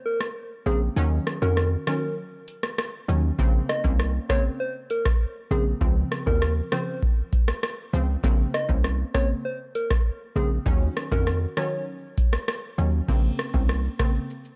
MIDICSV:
0, 0, Header, 1, 5, 480
1, 0, Start_track
1, 0, Key_signature, -5, "minor"
1, 0, Tempo, 606061
1, 763, Time_signature, 4, 2, 24, 8
1, 11530, End_track
2, 0, Start_track
2, 0, Title_t, "Soft synth lead"
2, 0, Program_c, 0, 80
2, 44, Note_on_c, 0, 70, 83
2, 151, Note_off_c, 0, 70, 0
2, 526, Note_on_c, 0, 68, 83
2, 632, Note_off_c, 0, 68, 0
2, 1125, Note_on_c, 0, 70, 78
2, 1338, Note_off_c, 0, 70, 0
2, 1484, Note_on_c, 0, 70, 79
2, 1698, Note_off_c, 0, 70, 0
2, 2924, Note_on_c, 0, 75, 81
2, 3031, Note_off_c, 0, 75, 0
2, 3403, Note_on_c, 0, 73, 79
2, 3510, Note_off_c, 0, 73, 0
2, 3643, Note_on_c, 0, 72, 89
2, 3750, Note_off_c, 0, 72, 0
2, 3885, Note_on_c, 0, 70, 83
2, 3991, Note_off_c, 0, 70, 0
2, 4364, Note_on_c, 0, 68, 86
2, 4471, Note_off_c, 0, 68, 0
2, 4964, Note_on_c, 0, 70, 79
2, 5178, Note_off_c, 0, 70, 0
2, 5323, Note_on_c, 0, 72, 80
2, 5537, Note_off_c, 0, 72, 0
2, 6765, Note_on_c, 0, 75, 82
2, 6871, Note_off_c, 0, 75, 0
2, 7242, Note_on_c, 0, 73, 83
2, 7350, Note_off_c, 0, 73, 0
2, 7484, Note_on_c, 0, 72, 86
2, 7591, Note_off_c, 0, 72, 0
2, 7724, Note_on_c, 0, 70, 82
2, 7831, Note_off_c, 0, 70, 0
2, 8205, Note_on_c, 0, 68, 83
2, 8311, Note_off_c, 0, 68, 0
2, 8806, Note_on_c, 0, 70, 85
2, 9019, Note_off_c, 0, 70, 0
2, 9166, Note_on_c, 0, 73, 78
2, 9379, Note_off_c, 0, 73, 0
2, 11530, End_track
3, 0, Start_track
3, 0, Title_t, "Synth pluck"
3, 0, Program_c, 1, 84
3, 523, Note_on_c, 1, 49, 80
3, 525, Note_on_c, 1, 58, 70
3, 527, Note_on_c, 1, 60, 82
3, 630, Note_off_c, 1, 49, 0
3, 631, Note_off_c, 1, 58, 0
3, 632, Note_off_c, 1, 60, 0
3, 763, Note_on_c, 1, 51, 96
3, 765, Note_on_c, 1, 54, 85
3, 768, Note_on_c, 1, 61, 104
3, 1095, Note_off_c, 1, 51, 0
3, 1095, Note_off_c, 1, 54, 0
3, 1097, Note_off_c, 1, 61, 0
3, 1123, Note_on_c, 1, 51, 77
3, 1126, Note_on_c, 1, 66, 65
3, 1128, Note_on_c, 1, 61, 84
3, 1455, Note_off_c, 1, 51, 0
3, 1456, Note_off_c, 1, 66, 0
3, 1457, Note_off_c, 1, 61, 0
3, 1484, Note_on_c, 1, 51, 75
3, 1486, Note_on_c, 1, 54, 71
3, 1489, Note_on_c, 1, 61, 78
3, 1704, Note_off_c, 1, 51, 0
3, 1706, Note_off_c, 1, 54, 0
3, 1707, Note_off_c, 1, 61, 0
3, 2442, Note_on_c, 1, 51, 75
3, 2444, Note_on_c, 1, 54, 70
3, 2447, Note_on_c, 1, 61, 82
3, 2550, Note_off_c, 1, 51, 0
3, 2551, Note_off_c, 1, 54, 0
3, 2552, Note_off_c, 1, 61, 0
3, 2681, Note_on_c, 1, 49, 98
3, 2684, Note_on_c, 1, 58, 82
3, 2686, Note_on_c, 1, 60, 105
3, 3014, Note_off_c, 1, 49, 0
3, 3015, Note_off_c, 1, 58, 0
3, 3016, Note_off_c, 1, 60, 0
3, 3041, Note_on_c, 1, 61, 73
3, 3044, Note_on_c, 1, 58, 70
3, 3046, Note_on_c, 1, 60, 79
3, 3374, Note_off_c, 1, 61, 0
3, 3375, Note_off_c, 1, 58, 0
3, 3376, Note_off_c, 1, 60, 0
3, 3400, Note_on_c, 1, 49, 74
3, 3403, Note_on_c, 1, 58, 67
3, 3406, Note_on_c, 1, 60, 83
3, 3623, Note_off_c, 1, 49, 0
3, 3624, Note_off_c, 1, 58, 0
3, 3626, Note_off_c, 1, 60, 0
3, 4362, Note_on_c, 1, 49, 78
3, 4364, Note_on_c, 1, 58, 71
3, 4367, Note_on_c, 1, 60, 84
3, 4469, Note_off_c, 1, 49, 0
3, 4471, Note_off_c, 1, 58, 0
3, 4472, Note_off_c, 1, 60, 0
3, 4600, Note_on_c, 1, 49, 91
3, 4603, Note_on_c, 1, 53, 88
3, 4605, Note_on_c, 1, 60, 99
3, 4933, Note_off_c, 1, 49, 0
3, 4934, Note_off_c, 1, 53, 0
3, 4936, Note_off_c, 1, 60, 0
3, 4961, Note_on_c, 1, 49, 75
3, 4964, Note_on_c, 1, 53, 69
3, 4966, Note_on_c, 1, 60, 81
3, 5293, Note_off_c, 1, 49, 0
3, 5295, Note_off_c, 1, 53, 0
3, 5296, Note_off_c, 1, 60, 0
3, 5322, Note_on_c, 1, 49, 73
3, 5325, Note_on_c, 1, 53, 71
3, 5327, Note_on_c, 1, 60, 81
3, 5544, Note_off_c, 1, 49, 0
3, 5545, Note_off_c, 1, 53, 0
3, 5546, Note_off_c, 1, 60, 0
3, 6281, Note_on_c, 1, 49, 75
3, 6283, Note_on_c, 1, 53, 71
3, 6286, Note_on_c, 1, 60, 87
3, 6389, Note_off_c, 1, 49, 0
3, 6390, Note_off_c, 1, 53, 0
3, 6392, Note_off_c, 1, 60, 0
3, 6520, Note_on_c, 1, 49, 94
3, 6522, Note_on_c, 1, 58, 85
3, 6525, Note_on_c, 1, 60, 102
3, 6853, Note_off_c, 1, 49, 0
3, 6854, Note_off_c, 1, 58, 0
3, 6856, Note_off_c, 1, 60, 0
3, 6880, Note_on_c, 1, 61, 75
3, 6882, Note_on_c, 1, 58, 67
3, 6885, Note_on_c, 1, 60, 79
3, 7213, Note_off_c, 1, 61, 0
3, 7214, Note_off_c, 1, 58, 0
3, 7215, Note_off_c, 1, 60, 0
3, 7241, Note_on_c, 1, 49, 73
3, 7243, Note_on_c, 1, 58, 70
3, 7245, Note_on_c, 1, 60, 80
3, 7463, Note_off_c, 1, 49, 0
3, 7464, Note_off_c, 1, 58, 0
3, 7465, Note_off_c, 1, 60, 0
3, 8201, Note_on_c, 1, 49, 78
3, 8203, Note_on_c, 1, 58, 69
3, 8205, Note_on_c, 1, 60, 85
3, 8310, Note_off_c, 1, 49, 0
3, 8310, Note_off_c, 1, 58, 0
3, 8311, Note_off_c, 1, 60, 0
3, 8440, Note_on_c, 1, 51, 93
3, 8442, Note_on_c, 1, 54, 87
3, 8445, Note_on_c, 1, 61, 109
3, 8773, Note_off_c, 1, 51, 0
3, 8774, Note_off_c, 1, 54, 0
3, 8775, Note_off_c, 1, 61, 0
3, 8802, Note_on_c, 1, 51, 73
3, 8804, Note_on_c, 1, 66, 68
3, 8807, Note_on_c, 1, 61, 85
3, 9134, Note_off_c, 1, 51, 0
3, 9135, Note_off_c, 1, 66, 0
3, 9136, Note_off_c, 1, 61, 0
3, 9163, Note_on_c, 1, 51, 73
3, 9165, Note_on_c, 1, 54, 66
3, 9168, Note_on_c, 1, 61, 78
3, 9384, Note_off_c, 1, 51, 0
3, 9385, Note_off_c, 1, 54, 0
3, 9387, Note_off_c, 1, 61, 0
3, 10121, Note_on_c, 1, 51, 73
3, 10124, Note_on_c, 1, 54, 71
3, 10125, Note_on_c, 1, 61, 84
3, 10229, Note_off_c, 1, 51, 0
3, 10231, Note_off_c, 1, 54, 0
3, 10231, Note_off_c, 1, 61, 0
3, 10361, Note_on_c, 1, 49, 97
3, 10364, Note_on_c, 1, 58, 90
3, 10367, Note_on_c, 1, 60, 102
3, 10694, Note_off_c, 1, 49, 0
3, 10695, Note_off_c, 1, 58, 0
3, 10696, Note_off_c, 1, 60, 0
3, 10722, Note_on_c, 1, 61, 78
3, 10724, Note_on_c, 1, 58, 68
3, 10726, Note_on_c, 1, 60, 83
3, 11054, Note_off_c, 1, 61, 0
3, 11055, Note_off_c, 1, 58, 0
3, 11056, Note_off_c, 1, 60, 0
3, 11081, Note_on_c, 1, 49, 70
3, 11083, Note_on_c, 1, 58, 71
3, 11086, Note_on_c, 1, 60, 78
3, 11303, Note_off_c, 1, 49, 0
3, 11304, Note_off_c, 1, 58, 0
3, 11306, Note_off_c, 1, 60, 0
3, 11530, End_track
4, 0, Start_track
4, 0, Title_t, "808-style bass"
4, 0, Program_c, 2, 38
4, 525, Note_on_c, 2, 34, 90
4, 706, Note_off_c, 2, 34, 0
4, 764, Note_on_c, 2, 39, 111
4, 946, Note_off_c, 2, 39, 0
4, 1124, Note_on_c, 2, 41, 99
4, 1397, Note_off_c, 2, 41, 0
4, 2444, Note_on_c, 2, 39, 90
4, 2626, Note_off_c, 2, 39, 0
4, 2684, Note_on_c, 2, 34, 107
4, 2866, Note_off_c, 2, 34, 0
4, 3046, Note_on_c, 2, 36, 88
4, 3318, Note_off_c, 2, 36, 0
4, 4363, Note_on_c, 2, 34, 93
4, 4545, Note_off_c, 2, 34, 0
4, 4603, Note_on_c, 2, 37, 109
4, 4785, Note_off_c, 2, 37, 0
4, 4966, Note_on_c, 2, 39, 94
4, 5238, Note_off_c, 2, 39, 0
4, 6284, Note_on_c, 2, 37, 90
4, 6466, Note_off_c, 2, 37, 0
4, 6524, Note_on_c, 2, 34, 102
4, 6706, Note_off_c, 2, 34, 0
4, 6886, Note_on_c, 2, 36, 91
4, 7158, Note_off_c, 2, 36, 0
4, 8204, Note_on_c, 2, 34, 93
4, 8386, Note_off_c, 2, 34, 0
4, 8444, Note_on_c, 2, 39, 115
4, 8626, Note_off_c, 2, 39, 0
4, 8806, Note_on_c, 2, 41, 96
4, 9078, Note_off_c, 2, 41, 0
4, 10123, Note_on_c, 2, 39, 89
4, 10305, Note_off_c, 2, 39, 0
4, 10364, Note_on_c, 2, 34, 108
4, 10546, Note_off_c, 2, 34, 0
4, 10726, Note_on_c, 2, 36, 91
4, 10998, Note_off_c, 2, 36, 0
4, 11530, End_track
5, 0, Start_track
5, 0, Title_t, "Drums"
5, 163, Note_on_c, 9, 37, 89
5, 242, Note_off_c, 9, 37, 0
5, 1004, Note_on_c, 9, 37, 87
5, 1004, Note_on_c, 9, 42, 84
5, 1083, Note_off_c, 9, 37, 0
5, 1083, Note_off_c, 9, 42, 0
5, 1243, Note_on_c, 9, 37, 89
5, 1322, Note_off_c, 9, 37, 0
5, 1482, Note_on_c, 9, 37, 100
5, 1482, Note_on_c, 9, 42, 61
5, 1561, Note_off_c, 9, 42, 0
5, 1562, Note_off_c, 9, 37, 0
5, 1963, Note_on_c, 9, 42, 89
5, 2042, Note_off_c, 9, 42, 0
5, 2085, Note_on_c, 9, 37, 88
5, 2164, Note_off_c, 9, 37, 0
5, 2205, Note_on_c, 9, 37, 102
5, 2284, Note_off_c, 9, 37, 0
5, 2446, Note_on_c, 9, 42, 78
5, 2525, Note_off_c, 9, 42, 0
5, 2684, Note_on_c, 9, 36, 111
5, 2763, Note_off_c, 9, 36, 0
5, 2925, Note_on_c, 9, 37, 89
5, 2925, Note_on_c, 9, 42, 84
5, 3004, Note_off_c, 9, 42, 0
5, 3005, Note_off_c, 9, 37, 0
5, 3046, Note_on_c, 9, 36, 87
5, 3125, Note_off_c, 9, 36, 0
5, 3164, Note_on_c, 9, 37, 90
5, 3243, Note_off_c, 9, 37, 0
5, 3402, Note_on_c, 9, 42, 63
5, 3403, Note_on_c, 9, 37, 97
5, 3404, Note_on_c, 9, 36, 91
5, 3482, Note_off_c, 9, 37, 0
5, 3482, Note_off_c, 9, 42, 0
5, 3483, Note_off_c, 9, 36, 0
5, 3881, Note_on_c, 9, 42, 86
5, 3960, Note_off_c, 9, 42, 0
5, 4003, Note_on_c, 9, 37, 94
5, 4005, Note_on_c, 9, 36, 92
5, 4082, Note_off_c, 9, 37, 0
5, 4085, Note_off_c, 9, 36, 0
5, 4365, Note_on_c, 9, 42, 74
5, 4444, Note_off_c, 9, 42, 0
5, 4603, Note_on_c, 9, 36, 114
5, 4682, Note_off_c, 9, 36, 0
5, 4844, Note_on_c, 9, 37, 90
5, 4844, Note_on_c, 9, 42, 79
5, 4923, Note_off_c, 9, 42, 0
5, 4924, Note_off_c, 9, 37, 0
5, 4966, Note_on_c, 9, 36, 83
5, 5045, Note_off_c, 9, 36, 0
5, 5084, Note_on_c, 9, 37, 95
5, 5163, Note_off_c, 9, 37, 0
5, 5322, Note_on_c, 9, 37, 96
5, 5322, Note_on_c, 9, 42, 66
5, 5401, Note_off_c, 9, 37, 0
5, 5401, Note_off_c, 9, 42, 0
5, 5565, Note_on_c, 9, 36, 89
5, 5644, Note_off_c, 9, 36, 0
5, 5802, Note_on_c, 9, 42, 83
5, 5803, Note_on_c, 9, 36, 96
5, 5881, Note_off_c, 9, 42, 0
5, 5883, Note_off_c, 9, 36, 0
5, 5924, Note_on_c, 9, 37, 93
5, 6003, Note_off_c, 9, 37, 0
5, 6044, Note_on_c, 9, 37, 101
5, 6123, Note_off_c, 9, 37, 0
5, 6286, Note_on_c, 9, 42, 78
5, 6365, Note_off_c, 9, 42, 0
5, 6524, Note_on_c, 9, 36, 109
5, 6603, Note_off_c, 9, 36, 0
5, 6765, Note_on_c, 9, 37, 88
5, 6765, Note_on_c, 9, 42, 84
5, 6844, Note_off_c, 9, 42, 0
5, 6845, Note_off_c, 9, 37, 0
5, 6886, Note_on_c, 9, 36, 82
5, 6965, Note_off_c, 9, 36, 0
5, 7003, Note_on_c, 9, 37, 91
5, 7082, Note_off_c, 9, 37, 0
5, 7242, Note_on_c, 9, 42, 62
5, 7243, Note_on_c, 9, 37, 100
5, 7244, Note_on_c, 9, 36, 92
5, 7322, Note_off_c, 9, 37, 0
5, 7322, Note_off_c, 9, 42, 0
5, 7323, Note_off_c, 9, 36, 0
5, 7722, Note_on_c, 9, 42, 89
5, 7802, Note_off_c, 9, 42, 0
5, 7845, Note_on_c, 9, 37, 95
5, 7846, Note_on_c, 9, 36, 91
5, 7924, Note_off_c, 9, 37, 0
5, 7926, Note_off_c, 9, 36, 0
5, 8206, Note_on_c, 9, 42, 73
5, 8285, Note_off_c, 9, 42, 0
5, 8444, Note_on_c, 9, 36, 115
5, 8523, Note_off_c, 9, 36, 0
5, 8685, Note_on_c, 9, 42, 85
5, 8686, Note_on_c, 9, 37, 92
5, 8765, Note_off_c, 9, 37, 0
5, 8765, Note_off_c, 9, 42, 0
5, 8807, Note_on_c, 9, 36, 83
5, 8886, Note_off_c, 9, 36, 0
5, 8924, Note_on_c, 9, 37, 92
5, 9004, Note_off_c, 9, 37, 0
5, 9163, Note_on_c, 9, 42, 64
5, 9164, Note_on_c, 9, 37, 97
5, 9242, Note_off_c, 9, 42, 0
5, 9243, Note_off_c, 9, 37, 0
5, 9642, Note_on_c, 9, 42, 90
5, 9644, Note_on_c, 9, 36, 95
5, 9722, Note_off_c, 9, 42, 0
5, 9723, Note_off_c, 9, 36, 0
5, 9764, Note_on_c, 9, 37, 89
5, 9843, Note_off_c, 9, 37, 0
5, 9885, Note_on_c, 9, 37, 98
5, 9964, Note_off_c, 9, 37, 0
5, 10126, Note_on_c, 9, 42, 77
5, 10205, Note_off_c, 9, 42, 0
5, 10363, Note_on_c, 9, 82, 81
5, 10364, Note_on_c, 9, 36, 113
5, 10364, Note_on_c, 9, 49, 88
5, 10442, Note_off_c, 9, 82, 0
5, 10443, Note_off_c, 9, 36, 0
5, 10443, Note_off_c, 9, 49, 0
5, 10484, Note_on_c, 9, 82, 57
5, 10563, Note_off_c, 9, 82, 0
5, 10604, Note_on_c, 9, 42, 81
5, 10604, Note_on_c, 9, 82, 60
5, 10605, Note_on_c, 9, 37, 93
5, 10684, Note_off_c, 9, 37, 0
5, 10684, Note_off_c, 9, 42, 0
5, 10684, Note_off_c, 9, 82, 0
5, 10724, Note_on_c, 9, 82, 75
5, 10726, Note_on_c, 9, 36, 85
5, 10803, Note_off_c, 9, 82, 0
5, 10805, Note_off_c, 9, 36, 0
5, 10844, Note_on_c, 9, 37, 93
5, 10844, Note_on_c, 9, 82, 72
5, 10923, Note_off_c, 9, 37, 0
5, 10923, Note_off_c, 9, 82, 0
5, 10966, Note_on_c, 9, 82, 49
5, 11045, Note_off_c, 9, 82, 0
5, 11083, Note_on_c, 9, 37, 96
5, 11083, Note_on_c, 9, 42, 64
5, 11083, Note_on_c, 9, 82, 46
5, 11084, Note_on_c, 9, 36, 89
5, 11162, Note_off_c, 9, 37, 0
5, 11162, Note_off_c, 9, 42, 0
5, 11162, Note_off_c, 9, 82, 0
5, 11163, Note_off_c, 9, 36, 0
5, 11204, Note_on_c, 9, 82, 64
5, 11284, Note_off_c, 9, 82, 0
5, 11326, Note_on_c, 9, 82, 76
5, 11405, Note_off_c, 9, 82, 0
5, 11444, Note_on_c, 9, 82, 61
5, 11523, Note_off_c, 9, 82, 0
5, 11530, End_track
0, 0, End_of_file